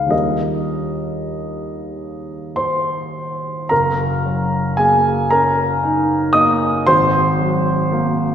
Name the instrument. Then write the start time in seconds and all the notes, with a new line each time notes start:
grand piano
Already playing: C#2 G#3 C#4 D#4 B4 F5
0.06 D#2 G3 D4 F4
0.10 A#4 D#5
2.56 C5 C6
3.69 F#1 A#4 A#5
4.26 F#3
4.77 A#3 G#4 G#5
5.30 C#4 A#4 A#5
5.83 D#4
6.33 A#3 D#5 D#6
6.87 G#1 C5 C6
7.39 F#3
7.92 A#3